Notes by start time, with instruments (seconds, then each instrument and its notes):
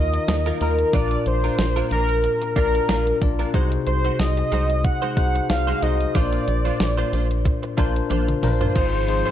Already playing: analog synth bass D#2, tine electric piano D#3 D#4 F4 A#4 D#5, analog synth lead D#5
0.14 muted clean electric guitar stroke, closed hi-hat
0.28 analog synth bass D#2, muted clean electric guitar stroke, snare, closed hi-hat
0.46 clean electric guitar A#3 D#4 F4 A#4, closed hi-hat
0.60 analog synth bass D#2, clean electric guitar A#3 D#4 F4 A#4, tine electric piano D#4 F4 A#4 D#5, analog synth lead A#4, closed hi-hat
0.79 muted clean electric guitar stroke, closed hi-hat
0.93 analog synth bass A#1, tine electric piano A#2 D4 F4 A#4 D5, clean electric guitar A#3 D4 F4 A#4, analog synth lead D5, kick, closed hi-hat
1.11 closed hi-hat
1.26 analog synth bass A#1, analog synth lead C5, muted clean electric guitar stroke, closed hi-hat
1.44 clean electric guitar A#3 D4 F4 A#4, closed hi-hat
1.59 analog synth bass A#1, snare, closed hi-hat
1.76 clean electric guitar A#3 D4 F4 A#4, closed hi-hat
1.91 analog synth bass A#1, clean electric guitar A#3 D4 F4 A#4, analog synth lead A#4, closed hi-hat
2.09 closed hi-hat
2.24 muted clean electric guitar stroke, closed hi-hat
2.42 muted clean electric guitar stroke, closed hi-hat
2.56 analog synth bass A#1, clean electric guitar A#3 D4 F4 A#4, tine electric piano D4 F4 A#4 D5, analog synth lead A#4, kick, closed hi-hat
2.74 muted clean electric guitar stroke, closed hi-hat
2.88 analog synth bass A#1, clean electric guitar A#3 D4 F4 A#4, snare, closed hi-hat
3.07 muted clean electric guitar stroke, closed hi-hat
3.21 analog synth bass A#1, tine electric piano D4 F4 A#4 D5, muted clean electric guitar stroke, kick, closed hi-hat
3.39 clean electric guitar A#3 D4 F4 A#4, closed hi-hat
3.54 analog synth bass C2, tine electric piano C3 D#4 F#4 G#4 C5, clean electric guitar G#3 D#4 F#4 C5, kick, closed hi-hat
3.72 muted clean electric guitar stroke, closed hi-hat
3.87 analog synth bass C2, analog synth lead C5, muted clean electric guitar stroke, closed hi-hat
4.05 clean electric guitar G#3 D#4 F#4 C5, closed hi-hat
4.19 analog synth bass C2, analog synth lead D#5, muted clean electric guitar stroke, snare, closed hi-hat
4.37 muted clean electric guitar stroke, closed hi-hat
4.52 analog synth bass C2, clean electric guitar G#3 D#4 F#4 C5, closed hi-hat
4.70 muted clean electric guitar stroke, closed hi-hat
4.84 analog synth lead F#5, muted clean electric guitar stroke, kick, closed hi-hat
5.02 clean electric guitar G#3 D#4 F#4 C5, closed hi-hat
5.17 analog synth bass C2, tine electric piano D#4 F#4 G#4 C5, analog synth lead F#5, muted clean electric guitar stroke, kick, closed hi-hat
5.35 muted clean electric guitar stroke, closed hi-hat
5.49 analog synth bass C2, analog synth lead F5, muted clean electric guitar stroke, snare, closed hi-hat
5.67 clean electric guitar G#3 D#4 F#4 C5, closed hi-hat
5.82 analog synth bass C2, clean electric guitar G#3 D#4 F#4 C5, tine electric piano D#4 F#4 G#4 C5, analog synth lead D#5, closed hi-hat
6.01 muted clean electric guitar stroke, closed hi-hat
6.15 analog synth bass A#1, tine electric piano A#2 D4 F4 A#4 C5, clean electric guitar A#3 D4 F4 C5, analog synth lead D5, kick, closed hi-hat
6.33 closed hi-hat
6.47 analog synth bass A#1, muted clean electric guitar stroke, closed hi-hat
6.65 clean electric guitar A#3 D4 F4 C5, closed hi-hat
6.80 analog synth bass A#1, snare, closed hi-hat
6.98 clean electric guitar A#3 D4 F4 C5, closed hi-hat
7.12 analog synth bass A#1, clean electric guitar A#3 D4 F4 C5, closed hi-hat
7.31 muted clean electric guitar stroke, closed hi-hat
7.45 muted clean electric guitar stroke, kick, closed hi-hat
7.63 muted clean electric guitar stroke, closed hi-hat
7.77 analog synth bass A#1, clean electric guitar A#3 D4 F4 C5, tine electric piano D4 F4 A#4 C5, kick, closed hi-hat
7.96 muted clean electric guitar stroke, closed hi-hat
8.10 analog synth bass A#1, clean electric guitar A#3 D4 F4 C5, closed hi-hat, high tom
8.28 muted clean electric guitar stroke, closed hi-hat, mid tom
8.43 analog synth bass A#1, tine electric piano D4 F4 A#4 C5, analog synth lead C5, muted clean electric guitar stroke, mid tom, open hi-hat
8.61 clean electric guitar A#3 D4 F4 C5, closed hi-hat, floor tom
8.75 analog synth bass G#1, tine electric piano G#2 D#4 F4 G#4 C5, string machine D#3 F3 G#3 C4 F4, clean electric guitar C4 F4 G#4 C5, kick, closed hi-hat, crash
8.93 muted clean electric guitar stroke
9.08 tine electric piano D#4 F4 G#4 C5, muted clean electric guitar stroke, closed hi-hat
9.26 clean electric guitar C4 F4 G#4 C5